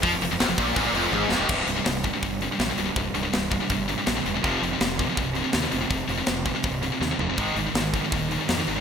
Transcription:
<<
  \new Staff \with { instrumentName = "Distorted electric guitar" } { \clef bass \time 4/4 \key c \minor \tempo 4 = 163 f16 f,16 f,16 f,16 f,16 f,16 bes,8 aes,16 bes,16 f,8 aes,8 f,16 ees,16 | <c, g, c>8 <c, g,>16 <c, g,>16 <c, g,>8 <c, g,>16 <c, g,>16 <c, g,>8 <c, g,>16 <c, g,>16 <c, g,>16 <c, g,>16 <c, g,>16 <c, g,>16 | <c, g,>8 <c, g,>16 <c, g,>16 <c, g,>8 <c, g,>16 <c, g,>16 <c, g,>8 <c, g,>16 <c, g,>16 <c, g,>16 <c, g,>16 <c, g,>16 <c, g,>16 | <f, c f>8 <f, c>16 <f, c>16 <f, c>8 <f, c>16 <f, c>16 <f, c>8 <f, c>16 <f, c>16 <f, c>16 <f, c>16 <f, c>16 <f, c>16 |
<f, c>8 <f, c>16 <f, c>16 <f, c>8 <f, c>16 <f, c>16 <f, c>8 <f, c>16 <f, c>16 <f, c>16 <f, c>16 <f, c>16 <f, c>16 | <aes, ees aes>8 <aes, ees>16 <aes, ees>16 <aes, ees>8 <aes, ees>16 <aes, ees>16 <aes, ees>8 <aes, ees>16 <aes, ees>16 <aes, ees>16 <aes, ees>16 <aes, ees>16 <aes, ees>16 | }
  \new Staff \with { instrumentName = "Distorted electric guitar" } { \clef bass \time 4/4 \key c \minor f16 f,16 f,16 f,16 f,16 f,16 bes,8 aes,16 bes,16 f,8 aes,8 f,16 ees,16 | <c, g, c>8 <c, g,>16 <c, g,>16 <c, g,>8 <c, g,>16 <c, g,>16 <c, g,>8 <c, g,>16 <c, g,>16 <c, g,>16 <c, g,>16 <c, g,>16 <c, g,>16 | <c, g,>8 <c, g,>16 <c, g,>16 <c, g,>8 <c, g,>16 <c, g,>16 <c, g,>8 <c, g,>16 <c, g,>16 <c, g,>16 <c, g,>16 <c, g,>16 <c, g,>16 | <f, c f>8 <f, c>16 <f, c>16 <f, c>8 <f, c>16 <f, c>16 <f, c>8 <f, c>16 <f, c>16 <f, c>16 <f, c>16 <f, c>16 <f, c>16 |
<f, c>8 <f, c>16 <f, c>16 <f, c>8 <f, c>16 <f, c>16 <f, c>8 <f, c>16 <f, c>16 <f, c>16 <f, c>16 <f, c>16 <f, c>16 | <aes, ees aes>8 <aes, ees>16 <aes, ees>16 <aes, ees>8 <aes, ees>16 <aes, ees>16 <aes, ees>8 <aes, ees>16 <aes, ees>16 <aes, ees>16 <aes, ees>16 <aes, ees>16 <aes, ees>16 | }
  \new Staff \with { instrumentName = "Distorted electric guitar" } { \clef bass \time 4/4 \key c \minor f16 f,16 f,16 f,16 f,16 f,16 bes,8 aes,16 bes,16 f,8 aes,8 f,16 ees,16 | r1 | r1 | r1 |
r1 | r1 | }
  \new Staff \with { instrumentName = "Fingered electric bass" } { \clef bass \time 4/4 \key c \minor f,16 f,,16 f,,16 f,,16 f,,16 f,,16 bes,,8 aes,,16 bes,,16 f,,8 aes,,8 f,,16 ees,,16 | c,,8 c,,8 c,,4 g,,4 bes,,8 c,,8 | c,,8 c,,8 c,,4 g,,4 bes,,8 e,,8 | f,,8 f,,8 f,,4 c,,4 ees,8 f,,8 |
f,,8 f,,8 f,,4 c,,4 ees,8 f,,8 | aes,,8 aes,,8 aes,,4 ees,,4 f,8 aes,,8 | }
  \new DrumStaff \with { instrumentName = "Drums" } \drummode { \time 4/4 <hho bd>8 hho8 <hho sn>8 <hho bd>8 <hho bd>8 hho8 tommh8 sn8 | <cymc bd>8 hho8 <hho sn>8 <hho bd>8 <hho bd>8 hho8 <hho sn>8 hho8 | <hho bd>8 hho8 <hho sn>8 <hho bd>8 <hho bd>8 hho8 <hho sn>8 hho8 | <hho bd>8 hho8 <hho sn>8 <hho bd>8 <hho bd>8 hho8 <hho sn>8 hho8 |
<hho bd>8 hho8 <hho sn>8 <hho bd>8 <hho bd>8 hho8 sn8 tomfh8 | <hho bd>8 hho8 <hho sn>8 <hho bd>8 <hho bd>8 hho8 <hho sn>8 hho8 | }
>>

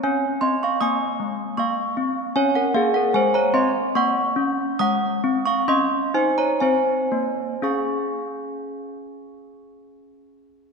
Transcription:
\new Staff \with { instrumentName = "Handbells" } { \time 3/4 \key des \major \tempo 4 = 70 << { <des'' aes''>8 <ees'' c'''>16 <f'' des'''>16 <aes'' ees'''>4 <f'' des'''>4 | <des'' aes''>16 <bes' ges''>16 <aes' f''>16 <bes' ges''>16 <c'' aes''>16 <des'' bes''>16 <ees'' c'''>8 <ges'' des'''>4 | <ges'' ees'''>8. <f'' des'''>16 <ees'' c'''>8 <c'' aes''>16 <des'' bes''>16 <c'' aes''>4 | <des' aes' f'' aes'' des'''>2. | } \\ { des'8 c'8 bes8 aes8 bes8 c'8 | des'8 bes8 aes8 c'8 bes8 des'8 | aes8 c'8 des'8 ees'8 c'8 bes8 | r2. | } >> }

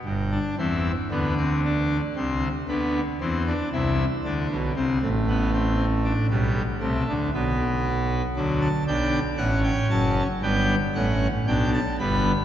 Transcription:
<<
  \new Staff \with { instrumentName = "Pipe organ" } { \time 4/4 \key g \major \tempo 4 = 58 << { r1 | r1 | r16 a''16 g''8 fis''16 g''16 a''8 g''8 fis''8 g''16 a''16 b''8 | } \\ { r16 d'16 c'8 b16 c'16 d'8 c'8 b8 c'16 d'16 e'8 | d'8 c'8 b16 c'8 d'16 g8 a8 b4 | fis8 d'8 cis'4 b8 cis'8 d'8 b8 | } >> }
  \new Staff \with { instrumentName = "Pipe organ" } { \clef bass \time 4/4 \key g \major <g,, g,>8 <e, e>8 <d, d>4 <c, c>8 <d, d>8 <e, e>8 <c, c>8 | <d, d>16 <b,, b,>16 <c, c>16 <a,, a,>4~ <a,, a,>16 <b,, b,>8 <c, c>16 <d, d>16 <b,, b,>4 | <d, d>8 <b,, b,>8 <a,, a,>8 <fis,, fis,>8 <g,, g,>8 <a,, a,>8 <b,, b,>8 <g,, g,>8 | }
>>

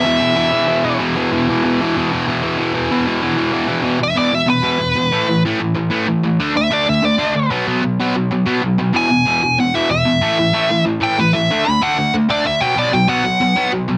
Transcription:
<<
  \new Staff \with { instrumentName = "Lead electric guitar" } { \time 4/4 \key b \dorian \tempo 4 = 189 e''2. r4 | r1 | r1 | r8 e''8 d''8 e''8 b'2~ |
b'4 r2. | r8 e''8 d''8 e''8 d''4. r8 | r1 | gis''2 fis''8 e''8 e''4~ |
e''2 r8 g''8 b'8 e''8~ | e''8 b''8 fis''4 r8 d''8 e''8 g''8 | d''8 g''8 fis''2 r4 | }
  \new Staff \with { instrumentName = "Distorted electric guitar" } { \clef bass \time 4/4 \key b \dorian <e, b, e>8 <e, b, e>8 <e, b, e>8 <e, b, e>8 <e, b, e>8 <e, b, e>8 <e, b, e>8 <e, b, e>8 | <e, b, e>8 <e, b, e>8 <e, b, e>8 <e, b, e>8 <e, b, e>8 <e, b, e>8 <e, b, e>8 <e, b, e>8 | <e, b, e>8 <e, b, e>8 <e, b, e>8 <e, b, e>8 <e, b, e>8 <e, b, e>8 <e, b, e>8 <e, b, e>8 | <e, b, e>8 <e, b,>8 <e, b, e>8 <e, b,>8 <e, b,>8 <e, b, e>8 <e, b,>8 <e, b,>8 |
<a, e a>8 <a, e>8 <a, e a>8 <a, e>8 <a, e>8 <a, e a>8 <a, e>8 <a, e>8 | <d a d'>8 <d a>8 <d a d'>8 <d a>8 <d a>8 <d a d'>8 <d a>8 <b, fis b>8 | <b, fis b>8 <b, fis>8 <b, fis b>8 <b, fis>8 <b, fis>8 <b, fis b>8 <b, fis>8 <b, fis>8 | <e, b, e>8 <e, b,>8 <e, b, e>8 <e, b,>8 <e, b,>8 <e, b, e>8 <e, b,>8 <e, b,>8 |
<a, e a>8 <a, e>8 <a, e a>8 <a, e>8 <a, e>8 <a, e a>8 <a, e>8 <a, e>8 | <d a d'>8 <d a>8 <d a d'>8 <d a>8 <d a>8 <d a d'>8 <d a>8 <b, fis b>8 | <b, fis b>8 <b, fis>8 <b, fis b>8 <b, fis>8 <b, fis>8 <b, fis b>8 <b, fis>8 <b, fis>8 | }
>>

